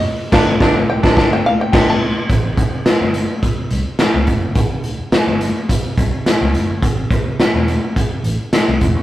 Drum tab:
CC |--x---------x---|----------------|----------------|----------------|
HH |----------------|x-x-x-x-x-x-x-x-|x-x-x-x-x-x-x-x-|x-x-x-x-x-x-x-x-|
SD |--o-o--oo---o---|----o-------o---|----o-------o---|----o-------o---|
BD |--o-o--oo---o---|o-o-----o-----o-|o-------o-o-----|o-o-----o-----o-|